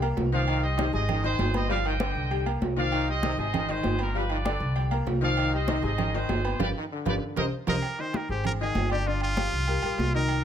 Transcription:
Already playing: upright bass C2
0.02 upright piano A#3 A#4 A#5, high conga, low agogo
0.17 upright bass C2, high conga, low timbale
0.32 upright piano D#3 D#4 C5, trombone section F3, trumpet section D5 F5
0.48 trombone section D#3, high conga, low agogo
0.63 upright piano G3 G4 G5, trumpet section C5 D#5, high conga
0.77 trombone section C3, upright piano D#3 D#4 D#5, high conga, low timbale, low agogo
0.93 upright bass G#1, trombone section C3, upright piano G#3 G#4 G#5, trumpet section C5 D#5, high conga
1.09 trombone section D#3, high conga, low conga, low agogo
1.24 upright piano D#3 D#4 D#5, trumpet section G#4 C5, high conga
1.39 upright bass G1, high conga, low timbale, low agogo
1.54 upright piano B3 B4 B5, trumpet section C5 D#5, high conga, low agogo
1.69 upright piano F3 F4 F5, trombone section G3, trumpet section D5 F5, high conga
1.85 trombone section D#3, trumpet section D#5 G5, high conga, low agogo
2.00 trombone section D3, upright piano D3 B4 D6, high conga, low timbale, low agogo
2.15 upright bass C2
2.31 upright piano G3 G4 G5, high conga, low agogo
2.46 upright piano A#3 A#4 A#5, high conga, low agogo
2.61 upright bass C2, high conga, low timbale
2.76 upright piano D#3 D#4 C5, trombone section F3, trumpet section D5 F5
2.92 trombone section D#3, high conga, low agogo
3.08 upright piano G3 G4 G5, trumpet section C5 D#5, high conga
3.23 trombone section C3, upright piano D#3 D#4 D#5, high conga, low timbale, low agogo
3.37 upright bass G#1, trombone section C3, upright piano G#3 G#4 G#5, trumpet section C5 D#5, high conga
3.53 trombone section D#3, high conga, low conga, low agogo
3.68 upright piano D#3 D#4 D#5, trumpet section G#4 C5, high conga
3.83 upright bass G1, high conga, low timbale, low agogo
3.99 upright piano B3 B4 B5, trumpet section G4 A#4, low agogo
4.14 upright piano F3 F4 F5, trombone section G3, trumpet section G4 B4, high conga
4.29 trombone section D#3, trumpet section B4 D5, high conga, low agogo
4.45 trombone section D3, upright piano D4 D5 D6, high conga, low timbale, low agogo
4.60 upright bass C2
4.75 upright piano G3 G4 G5, high conga, low agogo
4.91 upright piano A#3 A#4 A#5, high conga, low agogo
5.06 upright bass C2, high conga, low timbale
5.21 upright piano D#3 D#4 C5, trombone section F3, trumpet section D5 F5
5.37 trombone section D#3, high conga, low agogo
5.52 upright piano G3 G4 G5, trumpet section C5 D#5, high conga
5.68 trombone section C3, upright piano D#3 D#4 D#5, high conga, low timbale, low agogo
5.82 upright bass G#1, trombone section C3, upright piano G#3 G#4 G#5, trumpet section C5 D#5, high conga
5.98 trombone section D#3, high conga, low conga, low agogo
6.14 upright piano D#3 D#4 D#5, trumpet section G#4 C5, high conga
6.29 upright bass G1, high conga, low timbale, low agogo
6.44 upright piano B3 B4 B5, low agogo
6.59 upright bass G1, trombone section G3, upright piano F4 G4 B4, trumpet section G4 B4 D5, low conga, high timbale
6.76 trombone section D#3
6.91 trombone section D3
7.05 upright bass G1, upright piano F4 G4 B4, trumpet section G4 B4 D5, low conga, high timbale
7.36 upright bass C2, upright piano G4 A#4 C5, trumpet section A#4 C5 D#5, low conga, high timbale
7.67 upright bass C2, trombone section F3, upright piano G4 A#4 C5, trumpet section A#4 C5 D#5, muted trumpet A#4, low conga, high timbale
7.82 low agogo
7.98 upright piano D#3 D#4 D#5, muted trumpet C5, high conga
8.13 muted trumpet A#4, high conga, low timbale, low agogo
8.29 upright bass G#1, upright piano G#3 G#4 C5, muted trumpet G4, high conga
8.45 muted trumpet A#4, high conga, low conga, low agogo
8.60 upright piano D#3 D#4 D#5, muted trumpet G#4, high conga
8.75 upright bass G1, high conga, low timbale, low agogo
8.90 upright piano D3 D4 D5, muted trumpet G4, low agogo
9.06 upright piano D3 D4 D5, muted trumpet F4, high conga
9.21 muted trumpet F4, high conga, low agogo
9.37 upright piano F3 F4 G4, high conga, low timbale, low agogo
9.52 upright bass C2
9.67 upright piano G3 G4 A#4, high conga, low agogo
9.82 upright bass A#1, upright piano G3 G4 A#4, high conga, low agogo
9.98 upright bass C2, high conga, low timbale
10.14 upright piano D#3 D#4 D#5, muted trumpet A#4
10.29 low agogo

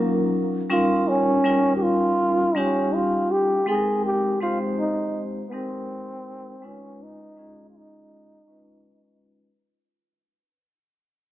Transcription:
Already playing: vibraphone F#3 C#4 D#4 F4 A#4, trombone A#3
0.70 vibraphone G3 C#4 D#4 F4 A#4, trombone F4
1.08 trombone C#4
1.44 vibraphone G3 C#4 D#4 F4 A#4
1.77 trombone G4
1.83 trombone F4
2.55 vibraphone G3 C#4 D#4 F4 G4, trombone C#4
2.94 trombone F4
3.32 trombone G4
3.66 vibraphone G#3 C4 D#4 A4 G5, trombone G#4
3.75 vibraphone A#4
4.06 trombone G4
4.40 vibraphone G#3 C4 D#4 G4 C5, trombone F4
4.80 trombone D#4
5.49 vibraphone G#3 C4, trombone B3
5.53 trombone C4, vibraphone D#4 G4 A#4
6.62 vibraphone G#3 C#4 D#4 F4 B4, trombone C#4
7.03 trombone D#4
7.36 vibraphone G#3 C#4 D#4 F4 G#4
7.70 trombone F4
7.77 trombone D#4
8.47 vibraphone G#3 C#4 D#4 F4 B4

